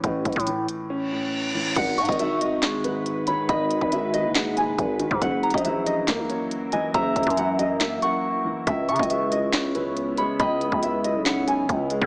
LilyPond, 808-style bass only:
\new Staff \with { instrumentName = "808-style bass" } { \clef bass \time 4/4 \key gis \minor \tempo 4 = 139 a,,8 a,,16 a,8. r2 r8 | gis,,8 gis,16 gis,,2. r16 | gis,,8. gis,,4 fis,,4~ fis,,16 gis,,8. gis,16 | fis,,8. ais,,4~ ais,,16 fis,16 ais,,16 r4. |
fis,,8 fis,,16 fis,4.~ fis,16 r4. | cis,8 cis16 cis,2. r16 | cis,8. cis,4 b,,4~ b,,16 cis,8. cis16 | }